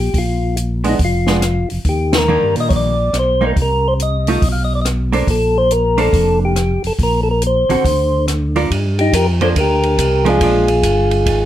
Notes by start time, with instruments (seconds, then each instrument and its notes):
Already playing: tonewheel organ A#1 G4
0.14 tonewheel organ A#1, kick, open hi-hat
0.18 tonewheel organ F4
0.57 closed hi-hat
0.84 hollow-body jazz guitar G#3 B3 D4, open hi-hat
0.89 tonewheel organ D#4
0.99 tonewheel organ F1, kick, open hi-hat
1.04 tonewheel organ F4
1.27 hollow-body jazz guitar G#3 B3 D4, snare
1.42 cross-stick, closed hi-hat
1.70 tonewheel organ F1, open hi-hat
1.85 tonewheel organ D#2, kick, open hi-hat
1.89 tonewheel organ G4
2.13 snare, ride
2.18 tonewheel organ A#4
2.28 hollow-body jazz guitar D#3 G3 A#3 D4
2.43 tonewheel organ G2
2.56 tonewheel organ A#2, open hi-hat
2.60 tonewheel organ D#5
2.69 tonewheel organ A#1 C#5, kick, open hi-hat
2.76 tonewheel organ D5
3.13 tonewheel organ B1, cross-stick, closed hi-hat
3.19 tonewheel organ C5
3.41 hollow-body jazz guitar G3 A#3 D#4
3.47 tonewheel organ A#4
3.56 tonewheel organ C2, kick, open hi-hat
3.62 tonewheel organ A#4
3.88 tonewheel organ C5
4.00 tonewheel organ D#5, closed hi-hat
4.27 hollow-body jazz guitar A3 D#4 F4, open hi-hat
4.42 tonewheel organ B1, kick, open hi-hat
4.52 tonewheel organ F5
4.64 tonewheel organ D#5
4.75 tonewheel organ D5
4.81 tonewheel organ D#5, cross-stick, closed hi-hat
5.12 hollow-body jazz guitar A#3 D4 A4 C5, open hi-hat
5.27 tonewheel organ A#1 A4, kick, open hi-hat
5.58 tonewheel organ C5
5.71 tonewheel organ A#4, closed hi-hat
5.98 hollow-body jazz guitar A#3 D4 A4 C5, tonewheel organ A4, open hi-hat
6.13 tonewheel organ F1, kick, open hi-hat
6.45 tonewheel organ G4
6.56 cross-stick, closed hi-hat
6.84 tonewheel organ F1 A4, open hi-hat
6.99 tonewheel organ A#1, kick, open hi-hat
7.03 tonewheel organ A#4
7.23 tonewheel organ A4
7.31 tonewheel organ A#4
7.42 closed hi-hat
7.47 tonewheel organ C5
7.69 tonewheel organ A#1, hollow-body jazz guitar D3 C4 F#4 A4, open hi-hat
7.85 tonewheel organ D2, kick, open hi-hat
8.28 cross-stick, closed hi-hat
8.56 hollow-body jazz guitar G3 D4 F4 A#4, open hi-hat
8.71 tonewheel organ G2, kick, ride
8.99 tonewheel organ D#4 G4, ride
9.13 tonewheel organ F2 G4 A#4, kick, hi-hat pedal, ride
9.41 hollow-body jazz guitar F3 A#3 D4, tonewheel organ A4 C5, ride
9.56 tonewheel organ D2 A#4, kick, ride
9.60 tonewheel organ G4
9.83 ride
9.98 tonewheel organ C2, kick, hi-hat pedal, ride
10.25 hollow-body jazz guitar F3 G#3 D4, tonewheel organ G#4, ride
10.29 tonewheel organ F4
10.41 tonewheel organ A#1, hollow-body jazz guitar F3 G#3 D4, kick, ride
10.68 ride
10.83 tonewheel organ G1, kick, hi-hat pedal, ride
11.11 ride
11.26 tonewheel organ G#1, kick, ride